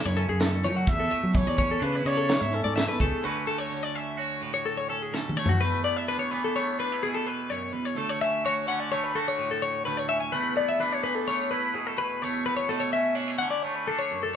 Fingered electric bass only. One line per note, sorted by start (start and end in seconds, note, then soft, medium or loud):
0.05 0.25 F#2 medium
0.29 0.66 F#2 medium
0.65 0.84 F#3 medium
0.87 1.07 E2 medium
1.23 1.43 F#3 medium
1.47 1.77 E2 medium
1.82 2.02 C#3 medium
2.05 2.35 C#3 medium
2.41 2.61 G#2 medium
2.65 2.85 G#2 medium
3.01 3.10 C#2 medium